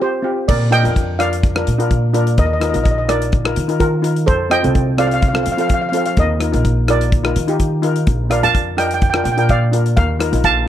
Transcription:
Already playing: C4 F4 G4 G5
0.02 G4 C5
0.22 C4 F4 G4
0.48 A#2 A#4 D5, kick, crash
0.71 D4 F4 A#4 D#5 G5, cross-stick, closed hi-hat
0.83 F2 D4 F4 A#4, closed hi-hat
0.96 kick, closed hi-hat
1.19 D4 F4 A#4 D5 F5, cross-stick, closed hi-hat
1.33 closed hi-hat
1.43 kick, closed hi-hat
1.55 D4 F4 A#4, cross-stick
1.67 A#2, closed hi-hat
1.78 D4 F4 A#4, closed hi-hat
1.91 kick, closed hi-hat
2.13 D4 F4 A#4, closed hi-hat
2.27 closed hi-hat
2.38 D#2 A#4 D#5, kick, closed hi-hat
2.46 D#5
2.53 D#5
2.60 D#4 F4 A#4 D#5, cross-stick, closed hi-hat
2.69 D#4 F4 D#5
2.74 A#1 A#4 D#5, closed hi-hat
2.84 D#5, kick, closed hi-hat
2.91 D#5
2.98 D#5
3.08 D#4 F4 A#4 D5, cross-stick, closed hi-hat
3.22 closed hi-hat
3.32 kick, closed hi-hat
3.44 D#4 F4 A#4, cross-stick
3.56 D#3, closed hi-hat
3.68 D#4 F4 A#4, closed hi-hat
3.80 F4 A#4, kick, closed hi-hat
4.02 D#4 F4 A#4, closed hi-hat
4.16 closed hi-hat
4.26 F2 A4 C5, kick, closed hi-hat
4.50 C4 F4 A4 D#5 G5, cross-stick, closed hi-hat
4.63 C2 C4 F4 A4, closed hi-hat
4.75 kick, closed hi-hat
4.97 C4 F4 A4 D5 F5, cross-stick, closed hi-hat
5.07 F5
5.11 F5, closed hi-hat
5.21 F5, kick, closed hi-hat
5.28 F5
5.34 C4 F4 A4 F5, cross-stick
5.43 F3 F5, closed hi-hat
5.52 F5
5.57 C4 F4 A4 F5, closed hi-hat
5.68 F5, kick, closed hi-hat
5.74 F5
5.82 F5
5.89 C4 F5
5.93 F4 A4, closed hi-hat
5.97 F5
6.06 F5, closed hi-hat
6.17 D#2 A#4 D#5, kick, closed hi-hat
6.40 D#4 F4 A#4, cross-stick, closed hi-hat
6.52 A#1 D#4 F4 A#4, closed hi-hat
6.65 kick, closed hi-hat
6.88 D#4 F4 A#4 D5, cross-stick, closed hi-hat
7.01 closed hi-hat
7.12 kick, closed hi-hat
7.24 D#4 F4 A#4, cross-stick
7.36 D#3, closed hi-hat
7.48 D#4 F4 G4, closed hi-hat
7.60 kick, closed hi-hat
7.82 D#4 F4 A#4, closed hi-hat
7.96 closed hi-hat
8.07 A#1, kick, closed hi-hat
8.30 D4 F4 A#4 D5 F5, cross-stick, closed hi-hat
8.43 F2 D4 F4 A#4 F5 A5, closed hi-hat
8.55 kick, closed hi-hat
8.77 D4 F4 A#4 D#5 G5, cross-stick, closed hi-hat
8.87 G5, closed hi-hat
8.94 G5
9.02 G5, kick, closed hi-hat
9.10 G5, cross-stick
9.14 D4 F4 A#4 G5
9.24 A#2 G5, closed hi-hat
9.32 G5
9.37 D4 F4 A#4 G5, closed hi-hat
9.49 D5 F5, kick, closed hi-hat
9.72 D4 F4 A#4, closed hi-hat
9.86 closed hi-hat
9.97 D#2 A#4 F5, kick, closed hi-hat
10.19 D#4 F4 A#4, cross-stick, closed hi-hat
10.32 A#1 D#4 F4 A#4, closed hi-hat
10.44 F5 A5, kick, closed hi-hat

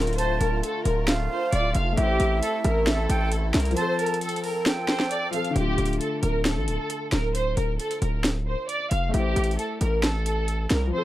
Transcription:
Already playing: D1 D3 A3 F4 A#4
0.02 closed hi-hat
0.07 closed hi-hat
0.13 closed hi-hat
0.18 C5 A5, closed hi-hat
0.41 D1 A#4, closed hi-hat
0.63 A4, closed hi-hat
0.85 D1 A#4, closed hi-hat
1.08 F5, snare, closed hi-hat
1.30 C5
1.52 D1 D5, closed hi-hat
1.75 F1 F5, closed hi-hat
1.93 A3
1.97 A1 C4 E4 G4 E5, closed hi-hat
2.03 C5
2.20 A1, closed hi-hat
2.42 A4, closed hi-hat
2.64 A1 A#4, cross-stick, closed hi-hat
2.87 A4, snare, closed hi-hat
3.09 A1 G5, closed hi-hat
3.32 closed hi-hat
3.54 C2 A#4, snare, closed hi-hat
3.60 closed hi-hat
3.65 closed hi-hat
3.71 F3, closed hi-hat
3.76 F3 C4 A4 C5 A5, closed hi-hat
3.81 A4
3.99 A#4, closed hi-hat
4.06 closed hi-hat
4.14 closed hi-hat
4.21 A4, closed hi-hat
4.29 closed hi-hat
4.36 closed hi-hat
4.44 A#4, open hi-hat
4.66 G5, snare, closed hi-hat
4.88 C5, snare
5.00 snare
5.11 D5, closed hi-hat
5.31 F3 C4 F5, closed hi-hat, open hi-hat
5.36 A4
5.44 closed hi-hat
5.50 D3
5.56 D1 A3 G4, closed hi-hat
5.61 F4
5.78 D1, closed hi-hat
5.85 closed hi-hat
5.93 closed hi-hat
6.00 A4, closed hi-hat
6.23 D1 A#4, closed hi-hat
6.45 A4, snare, closed hi-hat
6.56 A1
6.68 D1, closed hi-hat
6.90 closed hi-hat
7.12 D1 A#4, snare, closed hi-hat
7.35 C5, closed hi-hat
7.57 D1 A#4, closed hi-hat
7.80 A4, closed hi-hat
7.91 closed hi-hat
8.02 D1 A#4, closed hi-hat
8.24 snare, closed hi-hat
8.47 C5
8.69 D5, closed hi-hat
8.91 F1 F5, closed hi-hat
9.09 A3
9.14 A1 E4 G4, closed hi-hat
9.19 C5
9.36 A1, closed hi-hat
9.44 closed hi-hat
9.51 closed hi-hat
9.59 A4, closed hi-hat
9.81 A1 A#4, closed hi-hat
10.03 A4, snare, closed hi-hat
10.26 closed hi-hat
10.48 closed hi-hat
10.70 C2 A#4, snare, closed hi-hat
10.87 F3
10.93 C4 C5
10.98 A4

